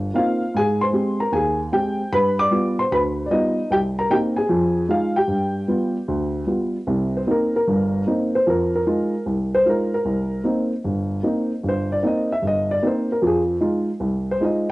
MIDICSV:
0, 0, Header, 1, 2, 480
1, 0, Start_track
1, 0, Key_signature, -3, "minor"
1, 0, Tempo, 396040
1, 657, Time_signature, 4, 2, 24, 8
1, 17835, End_track
2, 0, Start_track
2, 0, Title_t, "Upright piano"
2, 0, Program_c, 0, 0
2, 0, Note_on_c, 0, 67, 65
2, 0, Note_on_c, 0, 79, 89
2, 146, Note_off_c, 0, 67, 0
2, 169, Note_on_c, 0, 58, 51
2, 177, Note_on_c, 0, 60, 51
2, 178, Note_on_c, 0, 63, 54
2, 189, Note_on_c, 0, 77, 82
2, 210, Note_on_c, 0, 65, 63
2, 252, Note_off_c, 0, 79, 0
2, 506, Note_off_c, 0, 58, 0
2, 510, Note_off_c, 0, 60, 0
2, 511, Note_off_c, 0, 63, 0
2, 641, Note_off_c, 0, 65, 0
2, 658, Note_on_c, 0, 44, 66
2, 677, Note_off_c, 0, 77, 0
2, 686, Note_on_c, 0, 80, 100
2, 706, Note_on_c, 0, 68, 83
2, 978, Note_off_c, 0, 68, 0
2, 986, Note_on_c, 0, 84, 85
2, 997, Note_off_c, 0, 80, 0
2, 1006, Note_on_c, 0, 72, 57
2, 1073, Note_off_c, 0, 44, 0
2, 1122, Note_on_c, 0, 56, 53
2, 1129, Note_on_c, 0, 60, 53
2, 1136, Note_on_c, 0, 67, 58
2, 1426, Note_off_c, 0, 84, 0
2, 1437, Note_off_c, 0, 72, 0
2, 1458, Note_on_c, 0, 82, 79
2, 1462, Note_off_c, 0, 56, 0
2, 1466, Note_off_c, 0, 60, 0
2, 1469, Note_off_c, 0, 67, 0
2, 1473, Note_on_c, 0, 70, 60
2, 1602, Note_on_c, 0, 39, 62
2, 1607, Note_off_c, 0, 82, 0
2, 1611, Note_on_c, 0, 80, 87
2, 1615, Note_off_c, 0, 70, 0
2, 1634, Note_on_c, 0, 68, 70
2, 1908, Note_off_c, 0, 80, 0
2, 1920, Note_off_c, 0, 68, 0
2, 2024, Note_off_c, 0, 39, 0
2, 2087, Note_on_c, 0, 56, 53
2, 2094, Note_on_c, 0, 60, 44
2, 2096, Note_on_c, 0, 67, 58
2, 2097, Note_on_c, 0, 79, 83
2, 2424, Note_off_c, 0, 56, 0
2, 2428, Note_off_c, 0, 60, 0
2, 2429, Note_off_c, 0, 67, 0
2, 2574, Note_on_c, 0, 43, 62
2, 2577, Note_on_c, 0, 83, 103
2, 2590, Note_off_c, 0, 79, 0
2, 2599, Note_on_c, 0, 71, 84
2, 2871, Note_off_c, 0, 83, 0
2, 2882, Note_off_c, 0, 71, 0
2, 2902, Note_on_c, 0, 86, 105
2, 2919, Note_on_c, 0, 74, 63
2, 2990, Note_off_c, 0, 43, 0
2, 3042, Note_on_c, 0, 55, 54
2, 3052, Note_on_c, 0, 59, 52
2, 3056, Note_on_c, 0, 65, 66
2, 3343, Note_off_c, 0, 86, 0
2, 3352, Note_off_c, 0, 74, 0
2, 3381, Note_off_c, 0, 55, 0
2, 3384, Note_on_c, 0, 84, 84
2, 3386, Note_off_c, 0, 59, 0
2, 3389, Note_off_c, 0, 65, 0
2, 3404, Note_on_c, 0, 72, 65
2, 3530, Note_off_c, 0, 84, 0
2, 3534, Note_on_c, 0, 38, 63
2, 3540, Note_off_c, 0, 72, 0
2, 3544, Note_on_c, 0, 83, 92
2, 3560, Note_on_c, 0, 71, 75
2, 3614, Note_off_c, 0, 83, 0
2, 3628, Note_off_c, 0, 71, 0
2, 3950, Note_off_c, 0, 38, 0
2, 3955, Note_on_c, 0, 74, 60
2, 4008, Note_on_c, 0, 55, 52
2, 4013, Note_off_c, 0, 74, 0
2, 4013, Note_on_c, 0, 59, 50
2, 4016, Note_on_c, 0, 75, 87
2, 4021, Note_on_c, 0, 65, 58
2, 4038, Note_on_c, 0, 63, 63
2, 4344, Note_off_c, 0, 55, 0
2, 4347, Note_off_c, 0, 59, 0
2, 4351, Note_off_c, 0, 65, 0
2, 4473, Note_off_c, 0, 63, 0
2, 4492, Note_on_c, 0, 36, 62
2, 4508, Note_on_c, 0, 79, 93
2, 4509, Note_off_c, 0, 75, 0
2, 4521, Note_on_c, 0, 67, 82
2, 4578, Note_off_c, 0, 79, 0
2, 4589, Note_off_c, 0, 67, 0
2, 4833, Note_on_c, 0, 82, 86
2, 4850, Note_on_c, 0, 70, 58
2, 4909, Note_off_c, 0, 36, 0
2, 4971, Note_on_c, 0, 58, 59
2, 4971, Note_on_c, 0, 60, 51
2, 4980, Note_on_c, 0, 63, 64
2, 4980, Note_on_c, 0, 79, 91
2, 4983, Note_off_c, 0, 70, 0
2, 4989, Note_off_c, 0, 82, 0
2, 5001, Note_on_c, 0, 67, 66
2, 5051, Note_off_c, 0, 79, 0
2, 5069, Note_off_c, 0, 67, 0
2, 5290, Note_on_c, 0, 80, 85
2, 5306, Note_off_c, 0, 58, 0
2, 5306, Note_off_c, 0, 60, 0
2, 5309, Note_on_c, 0, 68, 72
2, 5310, Note_off_c, 0, 63, 0
2, 5442, Note_on_c, 0, 53, 69
2, 5443, Note_on_c, 0, 41, 72
2, 5863, Note_off_c, 0, 53, 0
2, 5864, Note_off_c, 0, 41, 0
2, 5888, Note_off_c, 0, 80, 0
2, 5899, Note_off_c, 0, 68, 0
2, 5919, Note_on_c, 0, 56, 56
2, 5922, Note_on_c, 0, 63, 53
2, 5929, Note_on_c, 0, 65, 64
2, 5945, Note_on_c, 0, 77, 82
2, 6257, Note_on_c, 0, 79, 78
2, 6260, Note_off_c, 0, 56, 0
2, 6262, Note_off_c, 0, 63, 0
2, 6265, Note_off_c, 0, 65, 0
2, 6266, Note_off_c, 0, 77, 0
2, 6276, Note_on_c, 0, 67, 61
2, 6393, Note_on_c, 0, 43, 64
2, 6819, Note_off_c, 0, 43, 0
2, 6885, Note_on_c, 0, 55, 59
2, 6886, Note_on_c, 0, 59, 51
2, 6891, Note_on_c, 0, 65, 61
2, 7223, Note_off_c, 0, 55, 0
2, 7224, Note_off_c, 0, 59, 0
2, 7226, Note_off_c, 0, 65, 0
2, 7370, Note_on_c, 0, 38, 69
2, 7789, Note_off_c, 0, 38, 0
2, 7810, Note_off_c, 0, 79, 0
2, 7819, Note_off_c, 0, 67, 0
2, 7834, Note_on_c, 0, 55, 49
2, 7842, Note_on_c, 0, 59, 50
2, 7848, Note_on_c, 0, 65, 57
2, 8178, Note_off_c, 0, 55, 0
2, 8182, Note_off_c, 0, 59, 0
2, 8185, Note_off_c, 0, 65, 0
2, 8327, Note_on_c, 0, 36, 68
2, 8328, Note_on_c, 0, 48, 61
2, 8686, Note_on_c, 0, 72, 69
2, 8747, Note_off_c, 0, 36, 0
2, 8748, Note_off_c, 0, 48, 0
2, 8809, Note_on_c, 0, 58, 50
2, 8810, Note_on_c, 0, 60, 51
2, 8820, Note_on_c, 0, 63, 58
2, 8829, Note_off_c, 0, 72, 0
2, 8861, Note_on_c, 0, 70, 76
2, 9144, Note_off_c, 0, 70, 0
2, 9146, Note_off_c, 0, 58, 0
2, 9147, Note_off_c, 0, 60, 0
2, 9152, Note_off_c, 0, 63, 0
2, 9163, Note_on_c, 0, 70, 77
2, 9300, Note_on_c, 0, 43, 64
2, 9301, Note_on_c, 0, 31, 71
2, 9715, Note_off_c, 0, 43, 0
2, 9716, Note_off_c, 0, 31, 0
2, 9748, Note_off_c, 0, 70, 0
2, 9775, Note_on_c, 0, 58, 55
2, 9782, Note_on_c, 0, 60, 48
2, 9789, Note_on_c, 0, 63, 62
2, 10110, Note_off_c, 0, 58, 0
2, 10114, Note_off_c, 0, 60, 0
2, 10117, Note_off_c, 0, 63, 0
2, 10124, Note_on_c, 0, 72, 80
2, 10259, Note_on_c, 0, 53, 66
2, 10265, Note_on_c, 0, 41, 67
2, 10268, Note_off_c, 0, 72, 0
2, 10299, Note_on_c, 0, 70, 73
2, 10587, Note_off_c, 0, 70, 0
2, 10610, Note_on_c, 0, 70, 72
2, 10676, Note_off_c, 0, 53, 0
2, 10678, Note_off_c, 0, 41, 0
2, 10743, Note_on_c, 0, 56, 62
2, 10745, Note_on_c, 0, 63, 48
2, 10751, Note_on_c, 0, 65, 67
2, 11075, Note_off_c, 0, 56, 0
2, 11076, Note_off_c, 0, 63, 0
2, 11079, Note_off_c, 0, 65, 0
2, 11193, Note_off_c, 0, 70, 0
2, 11225, Note_on_c, 0, 36, 61
2, 11570, Note_on_c, 0, 72, 90
2, 11639, Note_off_c, 0, 36, 0
2, 11699, Note_on_c, 0, 56, 53
2, 11706, Note_on_c, 0, 63, 48
2, 11712, Note_off_c, 0, 72, 0
2, 11714, Note_on_c, 0, 65, 59
2, 11751, Note_on_c, 0, 70, 75
2, 12031, Note_off_c, 0, 70, 0
2, 12033, Note_off_c, 0, 56, 0
2, 12037, Note_off_c, 0, 63, 0
2, 12041, Note_off_c, 0, 65, 0
2, 12049, Note_on_c, 0, 70, 78
2, 12182, Note_on_c, 0, 36, 67
2, 12598, Note_off_c, 0, 36, 0
2, 12633, Note_off_c, 0, 70, 0
2, 12651, Note_on_c, 0, 58, 55
2, 12658, Note_on_c, 0, 60, 51
2, 12664, Note_on_c, 0, 63, 64
2, 12990, Note_off_c, 0, 58, 0
2, 12993, Note_off_c, 0, 60, 0
2, 12996, Note_off_c, 0, 63, 0
2, 13143, Note_on_c, 0, 31, 69
2, 13558, Note_off_c, 0, 31, 0
2, 13613, Note_on_c, 0, 58, 55
2, 13617, Note_on_c, 0, 60, 50
2, 13623, Note_on_c, 0, 63, 63
2, 13950, Note_off_c, 0, 58, 0
2, 13952, Note_off_c, 0, 60, 0
2, 13956, Note_off_c, 0, 63, 0
2, 14100, Note_on_c, 0, 31, 64
2, 14163, Note_on_c, 0, 72, 83
2, 14440, Note_off_c, 0, 72, 0
2, 14448, Note_on_c, 0, 74, 71
2, 14517, Note_off_c, 0, 31, 0
2, 14577, Note_on_c, 0, 58, 57
2, 14580, Note_on_c, 0, 60, 55
2, 14583, Note_on_c, 0, 63, 62
2, 14592, Note_off_c, 0, 74, 0
2, 14626, Note_on_c, 0, 75, 70
2, 14912, Note_off_c, 0, 75, 0
2, 14913, Note_off_c, 0, 58, 0
2, 14914, Note_off_c, 0, 60, 0
2, 14915, Note_off_c, 0, 63, 0
2, 14935, Note_on_c, 0, 76, 84
2, 15051, Note_on_c, 0, 31, 63
2, 15075, Note_off_c, 0, 76, 0
2, 15116, Note_on_c, 0, 75, 79
2, 15397, Note_off_c, 0, 75, 0
2, 15405, Note_on_c, 0, 74, 83
2, 15472, Note_off_c, 0, 31, 0
2, 15542, Note_on_c, 0, 58, 60
2, 15548, Note_on_c, 0, 60, 52
2, 15549, Note_on_c, 0, 63, 60
2, 15550, Note_off_c, 0, 74, 0
2, 15597, Note_on_c, 0, 72, 73
2, 15875, Note_off_c, 0, 58, 0
2, 15877, Note_off_c, 0, 72, 0
2, 15878, Note_off_c, 0, 60, 0
2, 15878, Note_off_c, 0, 63, 0
2, 15902, Note_on_c, 0, 70, 72
2, 16023, Note_on_c, 0, 41, 69
2, 16025, Note_on_c, 0, 53, 69
2, 16039, Note_off_c, 0, 70, 0
2, 16082, Note_on_c, 0, 68, 77
2, 16254, Note_off_c, 0, 68, 0
2, 16437, Note_off_c, 0, 41, 0
2, 16439, Note_off_c, 0, 53, 0
2, 16491, Note_on_c, 0, 56, 60
2, 16494, Note_on_c, 0, 63, 53
2, 16502, Note_on_c, 0, 65, 69
2, 16828, Note_off_c, 0, 56, 0
2, 16830, Note_off_c, 0, 63, 0
2, 16834, Note_off_c, 0, 65, 0
2, 16970, Note_on_c, 0, 36, 65
2, 17348, Note_on_c, 0, 72, 83
2, 17390, Note_off_c, 0, 36, 0
2, 17457, Note_on_c, 0, 56, 57
2, 17470, Note_on_c, 0, 63, 50
2, 17475, Note_on_c, 0, 65, 58
2, 17481, Note_off_c, 0, 72, 0
2, 17509, Note_on_c, 0, 75, 73
2, 17791, Note_off_c, 0, 56, 0
2, 17792, Note_off_c, 0, 75, 0
2, 17797, Note_off_c, 0, 63, 0
2, 17800, Note_off_c, 0, 65, 0
2, 17835, End_track
0, 0, End_of_file